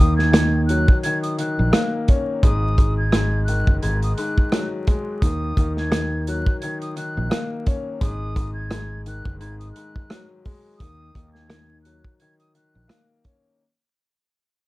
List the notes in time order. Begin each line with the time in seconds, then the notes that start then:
Already playing: D#6
0.00 D#2 D#3, closed hi-hat
0.17 G#6, snare
0.32 D#3, cross-stick, snare, closed hi-hat
0.66 F#3 F#6, closed hi-hat
0.88 kick
1.03 D#3 G#6, closed hi-hat
1.22 D#6, closed hi-hat
1.38 D#3 F#6, closed hi-hat
1.59 A#1
1.72 A#3, cross-stick, snare, closed hi-hat
2.08 C#4, kick, closed hi-hat
2.43 G#1 G#2 D#6, kick, closed hi-hat
2.78 G#2, kick, closed hi-hat
2.98 G#6
3.12 G#2, cross-stick, snare, closed hi-hat
3.44 D#3 F#6, closed hi-hat
3.67 F#1, kick
3.82 G#1 G#2 G#6, closed hi-hat
4.02 D#6, closed hi-hat
4.16 G#2 F#6, closed hi-hat
4.38 kick
4.52 F#3, cross-stick, snare, closed hi-hat
4.87 G#3, kick, closed hi-hat
5.21 D#2 D#3 D#6, kick, closed hi-hat
5.57 D#2 D#3, kick, closed hi-hat
5.77 G#6, snare
5.90 D#3, cross-stick, snare, closed hi-hat
6.27 F#3 F#6, closed hi-hat
6.46 kick
6.61 D#3 G#6, closed hi-hat
6.81 D#6, closed hi-hat
6.96 D#3 F#6, closed hi-hat
7.17 A#1
7.30 A#3, cross-stick, snare, closed hi-hat
7.66 C#4, kick, closed hi-hat
8.01 G#1 G#2 D#6, kick, closed hi-hat
8.36 G#2, kick, closed hi-hat
8.54 G#6
8.71 G#2, cross-stick, snare, closed hi-hat
9.06 D#3 F#6, closed hi-hat
9.25 F#1, kick
9.40 G#1 G#2 G#6, closed hi-hat
9.59 D#6, closed hi-hat
9.72 F#6, closed hi-hat
9.76 G#2
9.96 kick
10.10 F#3, cross-stick, snare, closed hi-hat
10.45 G#3, kick, open hi-hat
10.78 D#2 D#6, kick, closed hi-hat
10.82 D#3
11.15 D#2 D#3, kick, closed hi-hat
11.33 G#6, snare
11.48 D#3, cross-stick, snare, closed hi-hat
11.82 F#3 F#6, closed hi-hat
12.05 kick
12.20 D#3 G#6, closed hi-hat
12.39 D#6, closed hi-hat
12.54 D#3 F#6, closed hi-hat
12.75 A#1
12.88 A#3, cross-stick, snare, closed hi-hat
13.25 C#4, kick, closed hi-hat